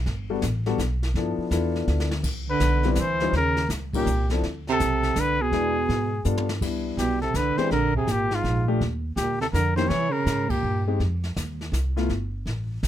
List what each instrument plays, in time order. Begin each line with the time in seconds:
0.06 upright bass G1, brush sweep, snare
0.30 grand piano G3 B3 D4 F#4 A4
0.42 upright bass A1, snare, hi-hat pedal
0.66 grand piano G3 B3 D4 F#4 A4, snare
0.78 upright bass B1, snare, hi-hat pedal
1.03 snare
1.14 upright bass G2, grand piano F3 B3 D4 E4 A4, brush sweep, snare
1.38 muted upright bass stroke
1.51 upright bass E2, grand piano B3 D4 E4 F4 A4, snare, hi-hat pedal
1.76 snare
1.88 upright bass D2, snare
2.00 snare
2.11 snare
2.23 upright bass C2, brush sweep, kick, snare, crash
2.50 baritone saxophone D3, trumpet B4
2.60 upright bass B1, snare, hi-hat pedal
2.83 grand piano G3 C4 D4 E4 B4, snare
2.92 upright bass D2, baritone saxophone D3, trumpet B4, snare, hi-hat pedal
2.99 baritone saxophone E3, trumpet C5
3.20 grand piano G3 C#4 D#4 F4 C5, snare
3.33 upright bass D#2, baritone saxophone C#3, trumpet A#4, brush sweep, snare
3.57 snare
3.69 upright bass C#2, snare, hi-hat pedal
3.93 baritone saxophone A#2, grand piano G3 C#4 D#4 F4 A#4, trumpet G4, kick, crash
4.06 upright bass C2, hi-hat pedal
4.30 grand piano F3 C4 D4 E4 A4, snare
4.43 upright bass D2, brush sweep, snare
4.67 baritone saxophone C3, snare
4.72 trumpet A4
4.80 upright bass B1, snare, hi-hat pedal
5.03 snare
5.16 upright bass C2, baritone saxophone D3, snare, hi-hat pedal
5.20 trumpet B4
5.41 baritone saxophone B2, trumpet G#4
5.52 upright bass E2, grand piano G#3 B3 D4 E4 G#4, brush sweep, snare
5.89 upright bass G#2, snare
6.25 upright bass G2, grand piano G3 B3 D4 F4 A4, hi-hat pedal
6.38 high tom
6.49 snare
6.61 upright bass C2, grand piano G3 B3 D4 E4, brush sweep, kick, snare, crash
6.97 upright bass B1, baritone saxophone B2, trumpet G4, snare, hi-hat pedal
7.22 baritone saxophone C3, trumpet A4, snare
7.34 upright bass C2, baritone saxophone D3, trumpet B4, snare, hi-hat pedal
7.57 baritone saxophone E3, grand piano G#3 C4 D4 G4, trumpet C5, muted upright bass stroke, snare
7.71 upright bass A#1, baritone saxophone D3, trumpet A#4, brush sweep, snare
7.94 baritone saxophone C3, trumpet G#4, kick
8.07 upright bass G#1, baritone saxophone A#2, snare, hi-hat pedal
8.11 trumpet G4
8.31 baritone saxophone G#2, trumpet F4, snare
8.43 upright bass A#1, snare
8.68 grand piano A3 D4 F4 G4
8.81 upright bass D#2, brush sweep, snare
9.16 upright bass D2, baritone saxophone A#2, trumpet G4, snare, hi-hat pedal
9.41 baritone saxophone C3, trumpet A4, snare
9.53 upright bass F2, baritone saxophone D3, trumpet A#4, snare, hi-hat pedal
9.76 baritone saxophone D#3, grand piano A#3 C#4 E4 G4, trumpet C5, snare
9.88 upright bass C3, baritone saxophone E3, trumpet C#5, brush sweep, snare
10.10 baritone saxophone C#3, trumpet A#4
10.26 upright bass G#2, snare, hi-hat pedal
10.49 baritone saxophone A#2, trumpet G4, kick, ride
10.63 upright bass G2
10.87 grand piano G#3 C4 D#4 G4
11.00 upright bass F2, brush sweep, snare
11.24 snare
11.36 upright bass D#2, snare, hi-hat pedal
11.61 snare
11.72 upright bass C2, snare, hi-hat pedal
11.96 grand piano A3 B3 E4 F4, snare
12.09 upright bass G1, brush sweep, snare
12.46 upright bass A1, snare
12.83 upright bass B1, snare, hi-hat pedal